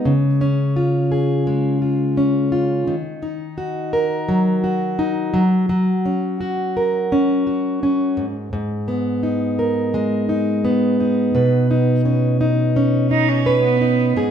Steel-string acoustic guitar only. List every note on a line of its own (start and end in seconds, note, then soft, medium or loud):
0.00 1.47 G#3 medium
0.00 0.12 B3 medium
0.00 0.12 D#4 soft
0.00 0.12 A#4 medium
0.05 2.87 C#3 medium
0.41 2.16 C#4 medium
0.76 1.81 F4 soft
1.12 2.95 G#4 medium
1.47 2.95 G#3 medium
1.82 2.51 F4 soft
2.17 2.95 C#4 soft
2.52 2.95 F4 medium
2.87 5.42 D#3 medium
3.23 4.98 D#4 medium
3.58 4.63 F#4 medium
3.93 6.76 A#4 medium
4.29 5.33 F#3 medium
4.64 6.40 F#4 soft
4.99 5.42 D#4 medium
5.34 5.68 F#3 medium
5.69 8.24 F#3 medium
6.06 7.11 C#4 medium
6.41 7.46 F#4 medium
6.77 8.56 A#4 medium
7.12 7.82 C#4 medium
7.47 8.24 F#4 soft
7.83 8.25 C#4 medium
8.17 8.52 G#2 medium
8.53 11.34 G#2 medium
8.88 10.64 B3 medium
9.23 10.29 D#4 soft
9.59 11.35 A#4 medium
9.94 11.42 G#3 medium
10.29 11.00 D#4 soft
10.65 12.05 B3 medium
11.00 11.70 D#4 medium
11.35 14.16 B2 medium
11.35 13.46 B4 medium
11.71 12.40 D#4 medium
12.05 12.75 C#4 medium
12.41 13.11 D#4 medium
12.76 14.24 C#4 medium
13.11 13.81 D#4 medium
13.46 14.17 B4 medium
13.81 14.31 D#4 medium
14.17 14.31 G#2 medium
14.17 14.31 G#4 medium